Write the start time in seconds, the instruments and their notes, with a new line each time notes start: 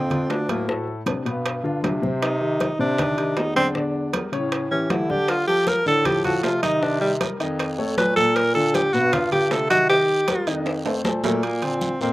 Already playing: bass clarinet F2, tenor saxophone C4
0.10 grand piano D3 D4 F4, high conga, low conga, high timbale
0.30 bass clarinet D2, tenor saxophone D4, high bongo, low bongo, high timbale, low timbale
0.49 grand piano A2 A3 A4, tenor saxophone A#3, high conga, high timbale
0.68 grand piano A2 A3 A4, high bongo, high conga
0.87 high conga
1.06 grand piano C3 C4 D4, high bongo, high conga, high timbale, low timbale
1.25 bass clarinet G2, grand piano B2 B3 B4, high bongo, high conga, high timbale
1.45 high bongo, high conga, high timbale
1.64 grand piano D3 D4 F4, high bongo, high conga
1.83 bass clarinet C3, grand piano D3 D4 F4, high bongo, low bongo, high conga, high timbale, low timbale
2.02 grand piano C3 C4 C5, high bongo, high conga
2.22 tenor saxophone D#4, high bongo, high conga, high timbale
2.41 grand piano D#3 D#4 G4, high conga
2.60 high bongo, high conga, high timbale, low timbale
2.79 grand piano C3 C4 C5, bass clarinet C3, tenor saxophone D4, high conga
2.98 grand piano D#3 D#4 G4, high bongo, high conga, low conga, high timbale
3.17 grand piano D#3 D#4 G4, high timbale
3.37 bass clarinet E2, tenor saxophone D#4, high bongo, low bongo, high conga, high timbale, low timbale
3.55 grand piano D3 D4 D5, tenor saxophone C4, high conga, high timbale
3.75 grand piano D3 D4 D5, high bongo, high conga
3.95 high conga
4.13 grand piano G3 G4 A#4, high bongo, high conga, high timbale, low timbale
4.32 bass clarinet A2, grand piano C#3 C#4 C#5, high bongo, high conga, high timbale
4.52 high bongo, high conga, high timbale
4.71 grand piano E3 E4 G4, tenor saxophone C#4, high bongo, high conga
4.90 bass clarinet D3, grand piano E3 E4 G4, tenor saxophone E4, high bongo, low bongo, high conga, high timbale, low timbale
5.09 grand piano D3 D4 D5, tenor saxophone G4, high bongo, high conga
5.28 tenor saxophone F4, high bongo, high conga, high timbale, long guiro
5.47 grand piano F3 F4 A4, tenor saxophone G4, high conga
5.67 tenor saxophone A#4, high bongo, high conga, high timbale, low timbale, short guiro
5.85 bass clarinet A2, grand piano D3 D4 D5, tenor saxophone A4, high conga, short guiro
6.05 grand piano F3 F4 A4, tenor saxophone G4, high bongo, high conga, low conga, high timbale, long guiro
6.24 grand piano F3 F4 A4, tenor saxophone F#4, high conga, low conga, high timbale
6.43 bass clarinet C3, tenor saxophone F4, high bongo, low bongo, high timbale, low timbale, short guiro
6.63 grand piano D#3 D#4 D#5, tenor saxophone D#4, high conga, high timbale, short guiro
6.82 grand piano D#3 D#4 D#5, tenor saxophone D4, high bongo, high conga, long guiro
7.01 tenor saxophone G3, high conga
7.20 grand piano G3 G4 A#4, high bongo, high conga, high timbale, low timbale, short guiro
7.40 bass clarinet F2, grand piano D#3 D#4 D#5, high bongo, high conga, high timbale, short guiro
7.59 high bongo, high conga, high timbale, long guiro
7.78 grand piano A3 A4 C#5, high bongo, high conga
7.97 bass clarinet A#2, grand piano A3 A4 C#5, tenor saxophone B4, high bongo, low bongo, high conga, high timbale, low timbale, short guiro
8.16 grand piano A#2 A#3 A#4, tenor saxophone A4, high bongo, high conga, short guiro
8.36 tenor saxophone A#4, high bongo, high conga, high timbale, long guiro
8.55 grand piano D3 D4 F4, tenor saxophone A4, high conga
8.74 tenor saxophone G4, high bongo, high conga, high timbale, low timbale, short guiro
8.93 bass clarinet G2, grand piano B2 B3 B4, tenor saxophone F#4, high conga, short guiro
9.12 grand piano D3 D4 F4, tenor saxophone F4, high bongo, high conga, low conga, high timbale, long guiro
9.32 grand piano D3 D4 F4, tenor saxophone G4, high conga, high timbale
9.51 bass clarinet C3, tenor saxophone A4, high bongo, low bongo, high conga, high timbale, low timbale, short guiro
9.70 grand piano D#3 D#4 D#5, tenor saxophone F#4, high conga, high timbale, short guiro
9.89 grand piano D#3 D#4 D#5, tenor saxophone G4, high bongo, long guiro
10.09 high conga
10.28 grand piano G3 G4 A#4, high bongo, high conga, high timbale, low timbale, short guiro
10.46 bass clarinet F2, grand piano D#3 D#4 D#5, high bongo, high conga, high timbale, short guiro
10.66 high bongo, high conga, high timbale, long guiro
10.85 grand piano A3 A4 C5, high bongo, high conga, high timbale
11.04 bass clarinet A#2, grand piano A3 A4 C5, high bongo, low bongo, high conga, low timbale, short guiro
11.23 grand piano A#2 A#3 A#4, tenor saxophone A3, high bongo, high conga, low timbale, short guiro
11.43 tenor saxophone A#3, high conga, high timbale, long guiro
11.62 grand piano D3 D4 F4, tenor saxophone C4, high conga, high timbale
11.81 high conga, short guiro
12.00 bass clarinet F2, grand piano A#2 A#3 A#4, tenor saxophone C4, high conga, short guiro